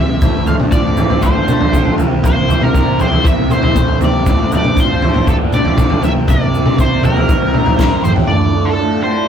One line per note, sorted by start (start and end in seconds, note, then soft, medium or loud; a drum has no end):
0.00 0.23 C3 medium
0.00 0.47 E5 medium
0.21 1.48 D2 medium
0.21 0.56 D2 medium
0.21 8.26 C4 medium
0.21 1.97 D4 medium
0.21 1.98 F4 medium
0.21 kick loud
0.21 floor tom medium
0.21 shaker medium
0.46 1.47 A3 medium
0.46 0.54 F5 medium
0.46 floor tom medium
0.46 shaker medium
0.60 0.99 F2 medium
0.60 mid tom medium
0.71 1.72 F4 medium
0.71 1.24 D5 medium
0.71 kick medium
0.71 shaker medium
0.97 1.21 A1 medium
0.97 3.00 C4 medium
0.97 floor tom medium
0.97 shaker medium
1.10 floor tom medium
1.22 1.99 D3 medium
1.22 1.94 C5 medium
1.22 kick medium
1.22 floor tom medium
1.22 shaker medium
1.35 1.70 D2 medium
1.48 1.99 A3 medium
1.48 mid tom medium
1.48 shaker medium
1.61 floor tom medium
1.73 1.85 A1 medium
1.73 1.99 F4 medium
1.73 kick loud
1.73 mid tom medium
1.73 shaker medium
1.85 floor tom medium
1.98 2.58 C2 medium
1.98 2.23 C3 medium
1.98 4.24 A#3 medium
1.98 4.24 E4 medium
1.98 floor tom medium
1.98 shaker medium
2.23 3.50 C3 medium
2.23 2.64 C5 medium
2.23 kick loud
2.23 floor tom medium
2.23 shaker medium
2.49 3.49 E4 medium
2.49 floor tom medium
2.49 shaker medium
2.61 3.01 C3 medium
2.61 3.01 A#4 medium
2.61 mid tom medium
2.74 3.75 C5 medium
2.74 kick medium
2.74 shaker medium
2.99 3.23 C2 medium
2.99 4.01 G4 medium
2.99 3.27 C5 medium
2.99 floor tom medium
2.99 shaker medium
3.12 floor tom medium
3.24 4.30 C4 medium
3.24 3.50 E5 loud
3.24 kick loud
3.24 floor tom medium
3.24 shaker medium
3.38 3.50 C2 medium
3.50 4.26 E4 medium
3.50 3.98 C5 medium
3.50 mid tom medium
3.50 shaker medium
3.63 3.86 A#1 medium
3.63 floor tom medium
3.76 4.30 C5 medium
3.76 kick loud
3.76 mid tom medium
3.76 shaker medium
3.88 floor tom medium
4.01 4.28 C3 medium
4.01 4.27 G4 medium
4.01 4.50 D5 medium
4.01 floor tom medium
4.01 shaker medium
4.26 4.61 D2 medium
4.26 5.53 D2 medium
4.26 6.01 D4 medium
4.26 6.01 F4 medium
4.26 kick loud
4.26 floor tom medium
4.26 shaker medium
4.52 5.51 A3 medium
4.52 4.79 D5 medium
4.52 floor tom medium
4.52 shaker medium
4.64 5.04 F2 medium
4.64 mid tom medium
4.77 5.77 F4 medium
4.77 5.29 C5 medium
4.77 kick medium
4.77 shaker medium
5.02 5.25 A1 medium
5.02 6.03 C4 medium
5.02 floor tom medium
5.14 floor tom medium
5.27 6.04 D3 medium
5.27 5.36 A4 medium
5.27 kick loud
5.27 floor tom medium
5.27 shaker medium
5.41 5.75 D2 medium
5.52 6.03 A3 medium
5.52 6.04 D5 medium
5.52 mid tom medium
5.52 shaker medium
5.65 floor tom medium
5.77 5.89 G1 medium
5.77 6.03 F4 medium
5.77 kick loud
5.77 mid tom medium
5.77 shaker medium
5.90 floor tom medium
6.02 6.62 C2 medium
6.02 6.28 C3 medium
6.02 8.28 A#3 medium
6.02 8.28 E4 medium
6.02 6.11 E5 medium
6.02 floor tom medium
6.02 shaker medium
6.28 7.55 C3 medium
6.28 6.76 D5 medium
6.28 kick loud
6.28 floor tom medium
6.28 shaker medium
6.54 7.53 E4 medium
6.54 shaker medium
6.65 7.05 C3 medium
6.65 mid tom medium
6.79 7.78 C5 medium
6.79 7.04 C5 medium
6.79 kick medium
6.79 shaker medium
7.03 7.27 C2 medium
7.03 8.04 G4 medium
7.03 8.01 A#4 medium
7.03 floor tom medium
7.03 mid tom medium
7.03 shaker medium
7.17 floor tom medium
7.28 8.30 C4 medium
7.28 kick medium
7.28 floor tom medium
7.28 shaker medium
7.41 7.53 C2 medium
7.54 8.30 E4 medium
7.54 mid tom medium
7.66 7.90 A#1 medium
7.66 floor tom medium
7.79 8.30 C5 medium
7.79 kick loud
7.79 snare medium
7.79 shaker medium
8.04 8.27 A1 medium
8.04 8.30 G4 medium
8.04 8.11 C5 medium
8.04 mid tom medium
8.04 shaker medium
8.16 floor tom medium
8.27 8.79 D2 medium
8.27 8.55 A2 medium
8.27 8.54 D3 loud
8.27 9.28 A3 medium
8.27 9.28 D4 medium
8.27 9.28 F4 medium
8.27 8.68 D5 medium
8.55 8.79 A2 medium
8.55 8.81 D3 medium
8.65 9.03 A4 medium
8.79 9.06 D2 medium
8.79 9.05 A2 medium
8.79 9.05 D3 medium
9.03 9.28 D2 medium
9.03 9.28 A2 medium
9.03 9.28 D3 medium
9.03 9.28 C5 medium